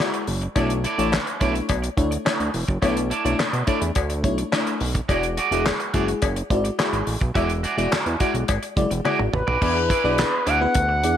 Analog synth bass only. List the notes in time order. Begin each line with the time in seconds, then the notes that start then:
0.28 F#1
0.56 B1
0.99 A1
1.41 B1
1.70 B1
1.97 D2
2.40 D2
2.54 E1
2.69 F#1
2.82 B1
3.25 B1
3.39 B2
3.53 B2
3.82 E2
3.96 D2
4.24 B1
4.81 B1
5.09 E1
5.51 E1
5.94 F#1
6.23 F#1
6.50 G#1
6.93 G#1
7.07 A1
7.21 B1
7.35 E1
7.78 E1
7.92 E2
8.06 E2
8.34 B1
8.49 G#1
8.77 F#1
8.91 E1
9.19 G#1
9.33 A1
9.48 B1
9.62 E2
10.04 B1
10.47 D2
10.75 D2
11.03 E2